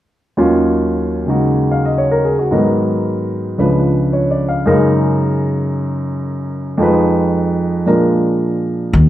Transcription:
0.37 D#2 D#3 F#3 C#4 F4
1.27 C#3 G#3 D#4 F#4
1.71 F5
1.85 D#5
1.98 C#5
2.12 A#4
2.25 G#4
2.39 F#4
2.51 G#2 D#3 F#3 B3 A#4
3.58 C#2 C#3 F3 D4 B4
4.13 C#5
4.31 D5
4.49 F5
4.66 F#2 C#3 G#3 D#4 A#4
6.78 F2 F3 G#3 D#4
6.83 B4
7.86 A#2 F3 G#3 D4 A#4
8.93 D#2

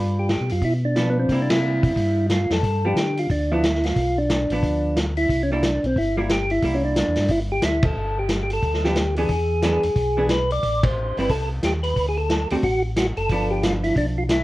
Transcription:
Already playing: G2 G3 D4 F4 B4
0.19 G4
0.29 snare, closed hi-hat
0.41 B2
0.50 F#2 F4, open hi-hat
0.62 B2 E4, kick, open hi-hat
0.85 D4
0.96 F3 B3 D4, snare, closed hi-hat
1.10 B3
1.19 C4
1.29 C3 G3 A#3 E4, kick, open hi-hat
1.42 D4
1.50 E4, snare, ride
1.83 kick, open hi-hat
1.96 G2, kick, open hi-hat
2.30 F4, snare, closed hi-hat
2.50 F2 A4, snare, open hi-hat
2.63 G2, kick, open hi-hat
2.85 F3 B3 D4 G4
2.96 D3, snare, closed hi-hat
3.17 F4, open hi-hat
3.30 D2 D4, kick, open hi-hat
3.51 F3 B3 D4 E4
3.63 snare, closed hi-hat
3.75 snare
3.84 F4, snare, open hi-hat
3.96 B1, kick, open hi-hat
4.18 D4
4.30 snare, closed hi-hat
4.50 A1 F3 B3 D4, open hi-hat
4.63 D2, kick, open hi-hat
4.96 F4, snare, closed hi-hat
5.17 E4, open hi-hat
5.29 C2, kick, open hi-hat
5.43 C#4
5.52 G3 A#3 D4 E4
5.63 snare, closed hi-hat
5.83 B1 C4, open hi-hat
5.96 G1 E4, kick, open hi-hat
6.17 G3 A#3 E4 F4
6.29 G4, snare, closed hi-hat
6.50 E4, open hi-hat
6.62 C2 G3 A#3 E4, kick, open hi-hat
6.74 C#4
6.84 D4
6.96 snare, closed hi-hat
7.08 E2
7.15 G2, snare, open hi-hat
7.29 G1 E4, kick, open hi-hat
7.52 G4
7.62 D2 E4, snare, closed hi-hat
7.83 A4, kick, ride
7.96 G1
8.19 G4
8.29 snare, closed hi-hat
8.43 G4
8.50 A4, open hi-hat
8.62 D2, kick, open hi-hat
8.73 snare
8.84 F3 B3 D4 G4, snare
8.95 snare, closed hi-hat
9.16 E3 B3 D4 G#4, open hi-hat
9.29 E2, kick, open hi-hat
9.62 E3 B3 D4 G#4, snare, closed hi-hat
9.83 E2, open hi-hat
9.96 B1, kick, open hi-hat
10.17 E3 B3 D4 G#4
10.29 B4, snare, closed hi-hat
10.51 D5, open hi-hat
10.63 A1, kick, open hi-hat
10.84 C5, kick, ride
11.17 G1 G3 C4 E4 B4, open hi-hat
11.29 C2 A4, kick, open hi-hat
11.63 D#2 G4, snare, closed hi-hat
11.83 B4, open hi-hat
11.96 D2, kick, open hi-hat
12.08 G#4
12.17 A4
12.29 snare, closed hi-hat
12.50 D2 D3 A3 C4 F#4 G4, open hi-hat
12.62 A1 F#4, kick, open hi-hat
12.96 F#4, snare, closed hi-hat
13.17 F#1 A4, open hi-hat
13.29 G1 F3 B3 D4, kick, open hi-hat
13.50 G4
13.63 F4, snare, closed hi-hat
13.84 E4, open hi-hat
13.96 B1 D4, kick, open hi-hat
14.18 F4
14.29 E4, snare, closed hi-hat

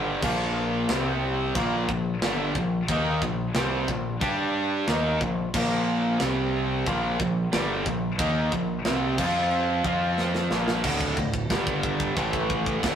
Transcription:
Already playing: G1 G2 D3 G3
0.22 A#1 A#2 F3 A#3, kick, china, crash
0.89 C2 C3 G3 C4, snare, china
1.55 A#1 A#2 F3 A#3, kick, china
1.89 A#1 A#2 F3, kick
2.22 G1 G2 D3 G3, snare, china
2.55 A#1 A#2 F3, kick
2.88 D#2 D#3 A#3 D#4, kick, china
3.22 A#1 A#2 F3, kick
3.55 C2 C3 G3 C4, snare, china
3.88 A#1 A#2 F3, kick
4.21 G2 G3 D4 G4, kick, china
4.88 D#2 D#3 A#3 D#4, snare, china
5.21 A#1 A#2 F3, kick
5.54 A#1 A#2 F3 A#3, kick, crash, china
6.20 C2 C3 G3 C4, snare, china
6.86 A#1 A#2 F3 A#3, kick, china
7.20 A#1 A#2 F3, kick
7.53 G1 G2 D3 G3, snare, china
7.86 A#1 A#2 F3, kick
8.19 D#2 D#3 A#3 D#4, kick, china
8.52 A#1 A#2 F3, kick
8.85 C2 C3 G3 C4, snare, china
9.18 F2 F3 C4 F4, kick, crash
9.51 china
9.84 F2 F3 C4 F4, kick
10.18 snare
10.35 snare
10.51 A#1 A#2 F3 A#3, snare
10.68 snare
10.83 D1 D2 A2 D3 A3 F4 D5, kick, crash, china
11.01 kick
11.17 D1 D2 A2, kick
11.34 kick
11.50 G1 G2 D3 G3 D4 D5, kick, snare, china
11.67 kick
11.83 kick
12.00 kick
12.16 A1 A2 E3 A3 E4 E5, kick, china
12.33 kick
12.50 kick
12.66 kick
12.81 D1 D2 A2 D3 D5 F5, kick, snare, china

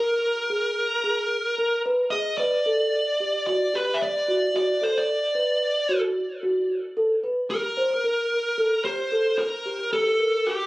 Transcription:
Already playing: A#4
0.50 G#4
1.04 G#4
1.58 A#4
1.86 B4
2.11 G#4 D#5
2.38 B4 D5
2.66 A4
3.20 G4
3.47 F#4 D5
3.74 G4 B4
3.94 E5
4.02 D5
4.28 F#4
4.54 F#4 D5
4.81 A4 C5
4.98 D5
5.35 B4
5.89 F#4
6.43 F#4
6.97 A4
7.24 B4
7.50 G4 A#4
7.77 C5
8.04 A#4
8.58 A4
8.85 G4 C5
9.12 A4
9.38 A#4
9.66 G4
9.93 G4 A4
10.20 A#4
10.46 G4

